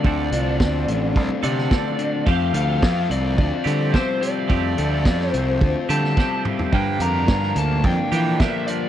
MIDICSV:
0, 0, Header, 1, 6, 480
1, 0, Start_track
1, 0, Tempo, 557103
1, 36, Time_signature, 4, 2, 24, 8
1, 7659, End_track
2, 0, Start_track
2, 0, Title_t, "Lead electric guitar"
2, 0, Program_c, 0, 29
2, 0, Note_on_c, 0, 74, 87
2, 1231, Note_off_c, 0, 74, 0
2, 1241, Note_on_c, 0, 74, 79
2, 1949, Note_off_c, 0, 74, 0
2, 1953, Note_on_c, 0, 77, 90
2, 2185, Note_off_c, 0, 77, 0
2, 2195, Note_on_c, 0, 77, 93
2, 2681, Note_off_c, 0, 77, 0
2, 2684, Note_on_c, 0, 74, 81
2, 2903, Note_off_c, 0, 74, 0
2, 2916, Note_on_c, 0, 74, 86
2, 3386, Note_on_c, 0, 72, 86
2, 3410, Note_off_c, 0, 74, 0
2, 3613, Note_off_c, 0, 72, 0
2, 3633, Note_on_c, 0, 74, 89
2, 4563, Note_off_c, 0, 74, 0
2, 4563, Note_on_c, 0, 72, 89
2, 5039, Note_off_c, 0, 72, 0
2, 5086, Note_on_c, 0, 81, 92
2, 5527, Note_off_c, 0, 81, 0
2, 5804, Note_on_c, 0, 79, 93
2, 6046, Note_off_c, 0, 79, 0
2, 6047, Note_on_c, 0, 82, 101
2, 6531, Note_on_c, 0, 81, 91
2, 6535, Note_off_c, 0, 82, 0
2, 6747, Note_off_c, 0, 81, 0
2, 6768, Note_on_c, 0, 79, 95
2, 6985, Note_off_c, 0, 79, 0
2, 7018, Note_on_c, 0, 79, 84
2, 7228, Note_on_c, 0, 76, 81
2, 7231, Note_off_c, 0, 79, 0
2, 7473, Note_off_c, 0, 76, 0
2, 7477, Note_on_c, 0, 74, 69
2, 7659, Note_off_c, 0, 74, 0
2, 7659, End_track
3, 0, Start_track
3, 0, Title_t, "Overdriven electric guitar"
3, 0, Program_c, 1, 29
3, 0, Note_on_c, 1, 57, 67
3, 0, Note_on_c, 1, 60, 66
3, 0, Note_on_c, 1, 65, 68
3, 53, Note_on_c, 1, 50, 67
3, 281, Note_off_c, 1, 65, 0
3, 285, Note_on_c, 1, 65, 66
3, 527, Note_off_c, 1, 60, 0
3, 530, Note_on_c, 1, 60, 66
3, 761, Note_off_c, 1, 57, 0
3, 764, Note_on_c, 1, 57, 62
3, 998, Note_off_c, 1, 60, 0
3, 1001, Note_on_c, 1, 60, 64
3, 1223, Note_off_c, 1, 50, 0
3, 1234, Note_on_c, 1, 50, 69
3, 1474, Note_off_c, 1, 57, 0
3, 1478, Note_on_c, 1, 57, 62
3, 1703, Note_off_c, 1, 50, 0
3, 1713, Note_on_c, 1, 50, 63
3, 1951, Note_off_c, 1, 50, 0
3, 1955, Note_on_c, 1, 53, 69
3, 2195, Note_on_c, 1, 69, 67
3, 2434, Note_off_c, 1, 65, 0
3, 2438, Note_on_c, 1, 65, 67
3, 2660, Note_off_c, 1, 60, 0
3, 2663, Note_on_c, 1, 60, 69
3, 2913, Note_off_c, 1, 65, 0
3, 2916, Note_on_c, 1, 65, 70
3, 3154, Note_off_c, 1, 57, 0
3, 3158, Note_on_c, 1, 55, 69
3, 3184, Note_off_c, 1, 53, 0
3, 3384, Note_off_c, 1, 60, 0
3, 3394, Note_off_c, 1, 69, 0
3, 3394, Note_on_c, 1, 60, 68
3, 3637, Note_off_c, 1, 55, 0
3, 3640, Note_on_c, 1, 55, 65
3, 3873, Note_on_c, 1, 53, 70
3, 4120, Note_on_c, 1, 69, 73
3, 4355, Note_off_c, 1, 65, 0
3, 4358, Note_on_c, 1, 65, 66
3, 4584, Note_off_c, 1, 60, 0
3, 4594, Note_on_c, 1, 60, 62
3, 4832, Note_off_c, 1, 65, 0
3, 4835, Note_on_c, 1, 65, 68
3, 4861, Note_off_c, 1, 55, 0
3, 5076, Note_on_c, 1, 55, 67
3, 5102, Note_off_c, 1, 53, 0
3, 5301, Note_off_c, 1, 60, 0
3, 5311, Note_on_c, 1, 60, 62
3, 5317, Note_off_c, 1, 69, 0
3, 5557, Note_off_c, 1, 55, 0
3, 5560, Note_on_c, 1, 55, 61
3, 5793, Note_off_c, 1, 60, 0
3, 5806, Note_on_c, 1, 43, 72
3, 5832, Note_off_c, 1, 65, 0
3, 6044, Note_on_c, 1, 70, 70
3, 6277, Note_on_c, 1, 62, 64
3, 6530, Note_on_c, 1, 58, 63
3, 6763, Note_off_c, 1, 62, 0
3, 6767, Note_on_c, 1, 62, 65
3, 7001, Note_off_c, 1, 43, 0
3, 7002, Note_off_c, 1, 55, 0
3, 7006, Note_on_c, 1, 53, 71
3, 7242, Note_off_c, 1, 58, 0
3, 7245, Note_on_c, 1, 58, 65
3, 7481, Note_off_c, 1, 53, 0
3, 7484, Note_on_c, 1, 53, 62
3, 7659, Note_off_c, 1, 53, 0
3, 7659, Note_off_c, 1, 58, 0
3, 7659, Note_off_c, 1, 62, 0
3, 7659, Note_off_c, 1, 70, 0
3, 7659, End_track
4, 0, Start_track
4, 0, Title_t, "Clean electric guitar"
4, 0, Program_c, 2, 27
4, 29, Note_on_c, 2, 50, 80
4, 39, Note_on_c, 2, 53, 82
4, 44, Note_on_c, 2, 60, 82
4, 45, Note_on_c, 2, 62, 83
4, 51, Note_on_c, 2, 69, 86
4, 1217, Note_off_c, 2, 50, 0
4, 1225, Note_off_c, 2, 62, 0
4, 1227, Note_off_c, 2, 69, 0
4, 1230, Note_on_c, 2, 69, 75
4, 1237, Note_on_c, 2, 62, 76
4, 1242, Note_off_c, 2, 60, 0
4, 1246, Note_on_c, 2, 60, 72
4, 1248, Note_off_c, 2, 53, 0
4, 1251, Note_on_c, 2, 53, 69
4, 1254, Note_on_c, 2, 50, 62
4, 1453, Note_off_c, 2, 50, 0
4, 1462, Note_off_c, 2, 62, 0
4, 1464, Note_on_c, 2, 50, 76
4, 1468, Note_off_c, 2, 53, 0
4, 1472, Note_on_c, 2, 53, 72
4, 1474, Note_off_c, 2, 60, 0
4, 1477, Note_on_c, 2, 60, 79
4, 1481, Note_on_c, 2, 62, 83
4, 1483, Note_off_c, 2, 69, 0
4, 1486, Note_on_c, 2, 69, 82
4, 1935, Note_off_c, 2, 50, 0
4, 1940, Note_off_c, 2, 53, 0
4, 1944, Note_off_c, 2, 62, 0
4, 1944, Note_on_c, 2, 53, 77
4, 1947, Note_off_c, 2, 60, 0
4, 1951, Note_on_c, 2, 57, 82
4, 1956, Note_on_c, 2, 60, 88
4, 1962, Note_off_c, 2, 69, 0
4, 1966, Note_on_c, 2, 67, 93
4, 3134, Note_off_c, 2, 67, 0
4, 3137, Note_off_c, 2, 60, 0
4, 3138, Note_off_c, 2, 57, 0
4, 3138, Note_on_c, 2, 67, 76
4, 3147, Note_on_c, 2, 60, 71
4, 3151, Note_on_c, 2, 57, 67
4, 3154, Note_off_c, 2, 53, 0
4, 3158, Note_on_c, 2, 53, 66
4, 3376, Note_off_c, 2, 53, 0
4, 3376, Note_off_c, 2, 60, 0
4, 3378, Note_off_c, 2, 57, 0
4, 3379, Note_on_c, 2, 53, 75
4, 3389, Note_on_c, 2, 57, 67
4, 3394, Note_on_c, 2, 60, 84
4, 3398, Note_off_c, 2, 67, 0
4, 3402, Note_on_c, 2, 67, 77
4, 3855, Note_off_c, 2, 53, 0
4, 3857, Note_off_c, 2, 57, 0
4, 3858, Note_on_c, 2, 53, 79
4, 3860, Note_off_c, 2, 60, 0
4, 3870, Note_on_c, 2, 57, 92
4, 3877, Note_off_c, 2, 67, 0
4, 3877, Note_on_c, 2, 60, 93
4, 3880, Note_on_c, 2, 67, 92
4, 5058, Note_off_c, 2, 57, 0
4, 5061, Note_off_c, 2, 60, 0
4, 5071, Note_off_c, 2, 67, 0
4, 5074, Note_on_c, 2, 67, 79
4, 5082, Note_on_c, 2, 60, 73
4, 5087, Note_on_c, 2, 57, 68
4, 5088, Note_off_c, 2, 53, 0
4, 5091, Note_on_c, 2, 53, 62
4, 5304, Note_off_c, 2, 60, 0
4, 5306, Note_off_c, 2, 57, 0
4, 5313, Note_off_c, 2, 53, 0
4, 5317, Note_on_c, 2, 53, 70
4, 5322, Note_on_c, 2, 57, 72
4, 5331, Note_on_c, 2, 60, 72
4, 5332, Note_off_c, 2, 67, 0
4, 5335, Note_on_c, 2, 67, 72
4, 5784, Note_off_c, 2, 57, 0
4, 5788, Note_off_c, 2, 60, 0
4, 5793, Note_on_c, 2, 43, 87
4, 5802, Note_off_c, 2, 53, 0
4, 5803, Note_on_c, 2, 50, 92
4, 5805, Note_on_c, 2, 53, 85
4, 5808, Note_on_c, 2, 58, 84
4, 5813, Note_on_c, 2, 62, 82
4, 5814, Note_off_c, 2, 67, 0
4, 5817, Note_on_c, 2, 67, 90
4, 6980, Note_off_c, 2, 43, 0
4, 6984, Note_off_c, 2, 67, 0
4, 6985, Note_off_c, 2, 50, 0
4, 6994, Note_on_c, 2, 67, 78
4, 6999, Note_off_c, 2, 62, 0
4, 7001, Note_off_c, 2, 58, 0
4, 7002, Note_on_c, 2, 62, 80
4, 7004, Note_on_c, 2, 58, 72
4, 7007, Note_off_c, 2, 53, 0
4, 7010, Note_on_c, 2, 53, 69
4, 7012, Note_on_c, 2, 50, 69
4, 7017, Note_on_c, 2, 43, 62
4, 7220, Note_off_c, 2, 67, 0
4, 7226, Note_off_c, 2, 43, 0
4, 7230, Note_off_c, 2, 50, 0
4, 7237, Note_on_c, 2, 43, 72
4, 7241, Note_off_c, 2, 53, 0
4, 7241, Note_on_c, 2, 50, 75
4, 7245, Note_off_c, 2, 58, 0
4, 7245, Note_on_c, 2, 53, 73
4, 7247, Note_off_c, 2, 62, 0
4, 7249, Note_on_c, 2, 58, 77
4, 7251, Note_on_c, 2, 62, 79
4, 7254, Note_on_c, 2, 67, 79
4, 7659, Note_off_c, 2, 43, 0
4, 7659, Note_off_c, 2, 50, 0
4, 7659, Note_off_c, 2, 53, 0
4, 7659, Note_off_c, 2, 58, 0
4, 7659, Note_off_c, 2, 62, 0
4, 7659, Note_off_c, 2, 67, 0
4, 7659, End_track
5, 0, Start_track
5, 0, Title_t, "Picked electric bass"
5, 0, Program_c, 3, 34
5, 38, Note_on_c, 3, 38, 81
5, 249, Note_off_c, 3, 38, 0
5, 272, Note_on_c, 3, 36, 86
5, 520, Note_off_c, 3, 36, 0
5, 520, Note_on_c, 3, 38, 86
5, 730, Note_off_c, 3, 38, 0
5, 760, Note_on_c, 3, 33, 73
5, 1004, Note_off_c, 3, 33, 0
5, 1004, Note_on_c, 3, 36, 86
5, 1106, Note_off_c, 3, 36, 0
5, 1236, Note_on_c, 3, 48, 85
5, 1447, Note_off_c, 3, 48, 0
5, 1955, Note_on_c, 3, 41, 87
5, 2166, Note_off_c, 3, 41, 0
5, 2188, Note_on_c, 3, 38, 83
5, 2434, Note_off_c, 3, 38, 0
5, 2434, Note_on_c, 3, 41, 89
5, 2646, Note_off_c, 3, 41, 0
5, 2669, Note_on_c, 3, 36, 78
5, 2920, Note_off_c, 3, 36, 0
5, 2920, Note_on_c, 3, 38, 90
5, 3023, Note_off_c, 3, 38, 0
5, 3151, Note_on_c, 3, 50, 87
5, 3364, Note_off_c, 3, 50, 0
5, 3876, Note_on_c, 3, 41, 83
5, 4087, Note_off_c, 3, 41, 0
5, 4123, Note_on_c, 3, 38, 87
5, 4357, Note_off_c, 3, 38, 0
5, 4357, Note_on_c, 3, 41, 85
5, 4567, Note_off_c, 3, 41, 0
5, 4598, Note_on_c, 3, 36, 80
5, 4840, Note_off_c, 3, 36, 0
5, 4840, Note_on_c, 3, 38, 84
5, 4943, Note_off_c, 3, 38, 0
5, 5079, Note_on_c, 3, 50, 86
5, 5289, Note_off_c, 3, 50, 0
5, 5800, Note_on_c, 3, 43, 84
5, 6009, Note_off_c, 3, 43, 0
5, 6028, Note_on_c, 3, 41, 86
5, 6281, Note_off_c, 3, 41, 0
5, 6281, Note_on_c, 3, 43, 86
5, 6490, Note_off_c, 3, 43, 0
5, 6511, Note_on_c, 3, 38, 76
5, 6756, Note_off_c, 3, 38, 0
5, 6756, Note_on_c, 3, 41, 85
5, 6861, Note_off_c, 3, 41, 0
5, 6996, Note_on_c, 3, 52, 87
5, 7207, Note_off_c, 3, 52, 0
5, 7659, End_track
6, 0, Start_track
6, 0, Title_t, "Drums"
6, 38, Note_on_c, 9, 36, 97
6, 125, Note_off_c, 9, 36, 0
6, 278, Note_on_c, 9, 42, 82
6, 364, Note_off_c, 9, 42, 0
6, 517, Note_on_c, 9, 36, 104
6, 519, Note_on_c, 9, 38, 109
6, 603, Note_off_c, 9, 36, 0
6, 606, Note_off_c, 9, 38, 0
6, 760, Note_on_c, 9, 42, 79
6, 846, Note_off_c, 9, 42, 0
6, 998, Note_on_c, 9, 36, 103
6, 1084, Note_off_c, 9, 36, 0
6, 1235, Note_on_c, 9, 42, 85
6, 1321, Note_off_c, 9, 42, 0
6, 1362, Note_on_c, 9, 38, 31
6, 1448, Note_off_c, 9, 38, 0
6, 1474, Note_on_c, 9, 36, 104
6, 1475, Note_on_c, 9, 38, 102
6, 1560, Note_off_c, 9, 36, 0
6, 1561, Note_off_c, 9, 38, 0
6, 1712, Note_on_c, 9, 42, 75
6, 1798, Note_off_c, 9, 42, 0
6, 1953, Note_on_c, 9, 36, 105
6, 2039, Note_off_c, 9, 36, 0
6, 2190, Note_on_c, 9, 42, 79
6, 2276, Note_off_c, 9, 42, 0
6, 2434, Note_on_c, 9, 36, 106
6, 2436, Note_on_c, 9, 38, 106
6, 2520, Note_off_c, 9, 36, 0
6, 2522, Note_off_c, 9, 38, 0
6, 2678, Note_on_c, 9, 42, 71
6, 2764, Note_off_c, 9, 42, 0
6, 2914, Note_on_c, 9, 36, 104
6, 3001, Note_off_c, 9, 36, 0
6, 3162, Note_on_c, 9, 42, 78
6, 3248, Note_off_c, 9, 42, 0
6, 3394, Note_on_c, 9, 36, 96
6, 3398, Note_on_c, 9, 38, 100
6, 3480, Note_off_c, 9, 36, 0
6, 3484, Note_off_c, 9, 38, 0
6, 3640, Note_on_c, 9, 42, 73
6, 3726, Note_off_c, 9, 42, 0
6, 3875, Note_on_c, 9, 36, 98
6, 3961, Note_off_c, 9, 36, 0
6, 4117, Note_on_c, 9, 42, 78
6, 4203, Note_off_c, 9, 42, 0
6, 4354, Note_on_c, 9, 36, 103
6, 4355, Note_on_c, 9, 38, 98
6, 4441, Note_off_c, 9, 36, 0
6, 4441, Note_off_c, 9, 38, 0
6, 4480, Note_on_c, 9, 38, 29
6, 4566, Note_off_c, 9, 38, 0
6, 4598, Note_on_c, 9, 42, 85
6, 4684, Note_off_c, 9, 42, 0
6, 4836, Note_on_c, 9, 36, 104
6, 4923, Note_off_c, 9, 36, 0
6, 5082, Note_on_c, 9, 42, 86
6, 5168, Note_off_c, 9, 42, 0
6, 5207, Note_on_c, 9, 38, 30
6, 5293, Note_off_c, 9, 38, 0
6, 5318, Note_on_c, 9, 36, 100
6, 5326, Note_on_c, 9, 38, 57
6, 5404, Note_off_c, 9, 36, 0
6, 5412, Note_off_c, 9, 38, 0
6, 5557, Note_on_c, 9, 45, 81
6, 5643, Note_off_c, 9, 45, 0
6, 5678, Note_on_c, 9, 43, 76
6, 5764, Note_off_c, 9, 43, 0
6, 5796, Note_on_c, 9, 36, 96
6, 5882, Note_off_c, 9, 36, 0
6, 6031, Note_on_c, 9, 42, 78
6, 6117, Note_off_c, 9, 42, 0
6, 6271, Note_on_c, 9, 38, 106
6, 6275, Note_on_c, 9, 36, 104
6, 6357, Note_off_c, 9, 38, 0
6, 6361, Note_off_c, 9, 36, 0
6, 6396, Note_on_c, 9, 38, 30
6, 6482, Note_off_c, 9, 38, 0
6, 6511, Note_on_c, 9, 42, 81
6, 6597, Note_off_c, 9, 42, 0
6, 6755, Note_on_c, 9, 36, 108
6, 6841, Note_off_c, 9, 36, 0
6, 6998, Note_on_c, 9, 42, 79
6, 7084, Note_off_c, 9, 42, 0
6, 7237, Note_on_c, 9, 36, 103
6, 7238, Note_on_c, 9, 38, 107
6, 7323, Note_off_c, 9, 36, 0
6, 7324, Note_off_c, 9, 38, 0
6, 7474, Note_on_c, 9, 42, 75
6, 7560, Note_off_c, 9, 42, 0
6, 7659, End_track
0, 0, End_of_file